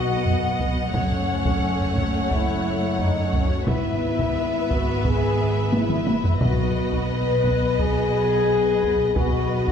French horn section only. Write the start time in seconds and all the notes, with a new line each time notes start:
Already playing: F#4
0.96 C#4
2.31 E4
2.98 D#4
3.22 C#4
3.46 F#4
3.67 E4
4.71 F#4
5.05 G#4
5.73 E4
6.41 F#4
7.11 B4
7.80 G#4
9.16 F#4